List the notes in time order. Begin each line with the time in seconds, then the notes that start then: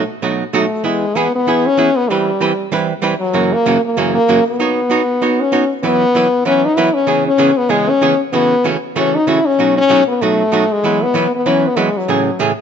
0.22 B2 F#3 A3 D#4 F#4
0.53 B2 F#3 A3 D#4 F#4
0.84 E3 G#3 B3 E4 G#4
1.15 E3 B3 E4 G#4
1.36 B3
1.47 E3 B3 E4 G#4
1.67 C#4
1.77 E3 B3 E4 G#4
1.97 B3
2.09 E3 G3 C4 E4 B4
2.41 E3 G3 C4 E4 B4
2.72 E3 G3 C4 E4 B4
3.02 E3 G3 C4 E4 B4
3.20 F#3
3.33 F#2 C#3 E3 A#3 C#4 F#4
3.53 A#3
3.66 F#2 C#3 E3 A#3 C#4 F#4
3.86 A#3
3.97 F#2 C#3 E3 A#3 C#4 F#4
4.15 A#3
4.28 F#2 C#3 E3 A#3 C#4 F#4
4.48 B3
4.60 B3 D#4 F#4 C#5
4.90 B3 D#4 F#4 C#5
5.22 B3 D#4 F#4 C#5
5.41 C#4
5.52 B3 D#4 F#4 C#5
5.83 E3 F#3 B3 E4 B4
6.15 E3 F#3 B3 E4 B4
6.45 E3 F#3 B3 C#4 E4 B4
6.66 D#4
6.76 E3 F#3 B3 E4 B4
6.94 C#4
7.07 C#3 E3 B3 C#4 G#4
7.28 C#4
7.38 C#3 E3 B3 C#4 G#4
7.58 B3
7.69 C#3 E3 G#3 B3 C#4 G#4
7.90 C#4
8.01 C#3 E3 B3 C#4 G#4
8.33 C#3 E3 A3 B3 C#4 F#4
8.64 C#3 E3 A3 C#4 F#4
8.96 C#3 E3 A3 C#4 F#4
9.16 D#4
9.27 C#3 E3 A3 C#4 E4 F#4
9.46 C#4
9.59 B2 F#3 A3 D#4 F#4
9.78 C#4
9.89 B2 F#3 A3 D#4 F#4
10.08 B3
10.21 B2 F#3 A3 D#4 F#4
10.52 B2 F#3 A3 D#4 F#4
10.73 G#3
10.84 E3 F#3 B3 E4 B4
11.03 B3
11.14 E3 F#3 B3 E4 B4
11.36 B3
11.46 E3 F#3 B3 C#4 E4 B4
11.68 B3
11.76 E3 F#3 G#3 B3 E4 B4
11.98 F#3
12.08 A2 C#3 E3 A3 C#4 G#4
12.39 A2 C#3 E3 A3 C#4 G#4